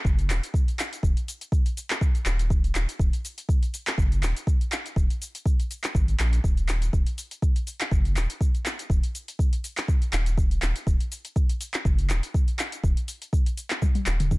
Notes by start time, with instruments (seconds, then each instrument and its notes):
0.05 analog synth bass F#1, kick, cabasa
0.19 closed hi-hat, cabasa
0.29 analog synth bass D#1, clap, open hi-hat, cabasa
0.43 closed hi-hat, cabasa
0.54 kick, cabasa
0.68 closed hi-hat, cabasa
0.79 clap, open hi-hat, cabasa
0.93 closed hi-hat, cabasa
1.03 analog synth bass D#1, kick, cabasa
1.17 closed hi-hat, cabasa
1.28 open hi-hat, cabasa
1.41 closed hi-hat, cabasa
1.52 kick, cabasa
1.66 closed hi-hat, cabasa
1.77 open hi-hat, cabasa
1.90 clap, closed hi-hat, cabasa
2.01 kick, cabasa
2.15 closed hi-hat, cabasa
2.26 analog synth bass D#1, clap, open hi-hat, cabasa
2.39 closed hi-hat, cabasa
2.50 kick, cabasa
2.64 closed hi-hat, cabasa
2.75 analog synth bass D#1, clap, open hi-hat, cabasa
2.89 closed hi-hat, cabasa
2.99 analog synth bass D#1, kick, cabasa
3.13 closed hi-hat, cabasa
3.25 open hi-hat, cabasa
3.38 closed hi-hat, cabasa
3.49 kick, cabasa
3.63 closed hi-hat, cabasa
3.74 open hi-hat, cabasa
3.87 clap, closed hi-hat, cabasa
3.98 analog synth bass F#1, kick, cabasa
4.12 closed hi-hat, cabasa
4.22 analog synth bass D#1, clap, open hi-hat, cabasa
4.36 closed hi-hat, cabasa
4.47 kick, cabasa
4.61 closed hi-hat, cabasa
4.72 clap, open hi-hat, cabasa
4.86 closed hi-hat, cabasa
4.96 analog synth bass D#1, kick, cabasa
5.10 closed hi-hat, cabasa
5.22 open hi-hat, cabasa
5.35 closed hi-hat, cabasa
5.46 kick, cabasa
5.60 closed hi-hat, cabasa
5.71 open hi-hat, cabasa
5.84 clap, closed hi-hat, cabasa
5.95 analog synth bass G#1, kick, cabasa
6.08 closed hi-hat, cabasa
6.20 analog synth bass A#1, clap, open hi-hat, cabasa
6.33 closed hi-hat, cabasa
6.44 analog synth bass D#1, kick, cabasa
6.57 closed hi-hat, cabasa
6.69 clap, open hi-hat, cabasa
6.82 closed hi-hat, cabasa
6.93 analog synth bass D#1, kick, cabasa
7.07 closed hi-hat, cabasa
7.18 open hi-hat, cabasa
7.31 closed hi-hat, cabasa
7.42 kick, cabasa
7.56 closed hi-hat, cabasa
7.67 open hi-hat, cabasa
7.81 clap, closed hi-hat, cabasa
7.91 analog synth bass F#1, kick, cabasa
8.05 closed hi-hat, cabasa
8.16 analog synth bass D#1, clap, open hi-hat, cabasa
8.30 closed hi-hat, cabasa
8.41 kick, cabasa
8.55 closed hi-hat, cabasa
8.66 clap, open hi-hat, cabasa
8.79 closed hi-hat, cabasa
8.90 analog synth bass D#1, kick, cabasa
9.03 closed hi-hat, cabasa
9.15 open hi-hat, cabasa
9.28 closed hi-hat, cabasa
9.39 kick, cabasa
9.53 closed hi-hat, cabasa
9.64 open hi-hat, cabasa
9.77 clap, closed hi-hat, cabasa
9.88 kick, cabasa
10.02 closed hi-hat, cabasa
10.13 analog synth bass D#1, clap, open hi-hat, cabasa
10.26 closed hi-hat, cabasa
10.38 kick, cabasa
10.51 closed hi-hat, cabasa
10.62 analog synth bass D#1, clap, open hi-hat, cabasa
10.76 closed hi-hat, cabasa
10.87 analog synth bass D#1, kick, cabasa
11.00 closed hi-hat, cabasa
11.12 open hi-hat, cabasa
11.25 closed hi-hat, cabasa
11.36 kick, cabasa
11.49 closed hi-hat, cabasa
11.61 open hi-hat, cabasa
11.74 clap, closed hi-hat, cabasa
11.85 analog synth bass F#1, kick, cabasa
11.98 closed hi-hat, cabasa
12.10 analog synth bass D#1, clap, open hi-hat, cabasa
12.23 closed hi-hat, cabasa
12.34 kick, cabasa
12.48 closed hi-hat, cabasa
12.59 clap, open hi-hat, cabasa
12.72 closed hi-hat, cabasa
12.83 analog synth bass D#1, kick, cabasa
12.97 closed hi-hat, cabasa
13.08 open hi-hat, cabasa
13.22 closed hi-hat, cabasa
13.33 kick, cabasa
13.46 closed hi-hat, cabasa
13.57 open hi-hat, cabasa
13.70 clap, closed hi-hat, cabasa
13.82 kick, high tom, cabasa
13.95 closed hi-hat, high tom, cabasa
14.06 analog synth bass D#1, clap, open hi-hat, cabasa
14.20 closed hi-hat, mid tom, cabasa
14.31 kick, mid tom, cabasa